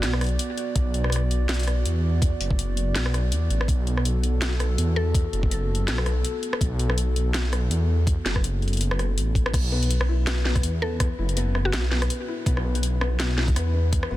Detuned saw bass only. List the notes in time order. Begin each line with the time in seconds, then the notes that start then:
0.03 B1
0.76 B1
1.86 E2
2.40 F#1
2.95 B1
3.31 E2
3.50 A1
3.68 B1
4.78 E2
5.33 F#1
5.88 B1
6.61 B1
7.70 E2
8.25 F#1
9.17 A1
9.54 B1
10.64 E2
11.18 F#1
11.73 B1
12.46 B1
13.56 E2
14.11 F#1